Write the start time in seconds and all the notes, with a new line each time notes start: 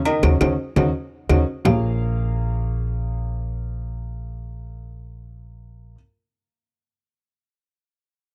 Already playing: D#2
0.05 D#3 D#4 D#5, cowbell, low agogo, claves
0.23 D#2 C#4 D#4 F#4, cowbell, high conga, high timbale, claves
0.41 D#2 C#4 D#4 F#4, cowbell, high conga, high timbale, claves
0.76 D#2 C#4 D#4 F#4, cowbell, high conga, high timbale, claves
1.29 D#2 C#4 D#4 F#4, cowbell, high conga, high timbale, claves
1.65 A#1 A#3 F4 G#4 A#4 C#5 F5, low bongo, low conga, low timbale, claves